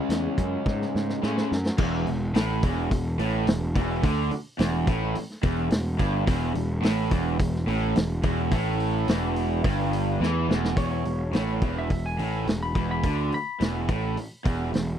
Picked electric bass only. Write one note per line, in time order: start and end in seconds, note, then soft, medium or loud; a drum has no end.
0.09 0.27 E2 medium
0.38 0.55 F#2 medium
0.66 0.84 G#2 medium
0.95 1.13 G#2 medium
1.23 1.41 A2 medium
1.52 1.69 F#2 medium
1.78 2.05 E1 loud
2.07 2.33 E1 medium
2.34 2.61 A1 medium
2.63 2.89 E1 medium
2.91 3.17 E1 medium
3.19 3.45 A1 medium
3.47 3.73 E1 medium
3.76 4.02 E1 loud
4.03 4.29 D2 loud
4.31 muted picked electric bass stroke soft
4.60 4.86 E1 medium
4.87 5.13 A1 medium
5.16 muted picked electric bass stroke soft
5.44 5.70 E1 medium
5.71 5.97 E1 medium
6.00 6.26 G1 medium
6.28 6.54 E1 loud
6.55 6.82 E1 medium
6.83 7.09 A1 loud
7.12 7.38 E1 loud
7.40 7.66 E1 medium
7.67 7.94 A1 medium
7.96 8.22 E1 medium
8.24 8.50 E1 medium
8.52 9.04 A1 loud
9.08 9.61 E1 medium
9.65 10.17 G1 loud
10.20 10.47 E2 medium
10.49 10.75 E1 medium
10.77 11.03 E1 medium
11.05 11.32 E1 medium
11.33 11.60 A1 medium
11.62 11.88 E1 medium
11.91 12.17 E1 medium
12.19 12.45 A1 medium
12.47 12.73 E1 medium
12.75 13.02 E1 medium
13.04 13.30 D2 loud
13.32 muted picked electric bass stroke soft
13.61 13.87 E1 medium
13.89 14.15 A1 medium
14.18 muted picked electric bass stroke soft
14.45 14.72 E1 medium
14.74 14.99 E1 medium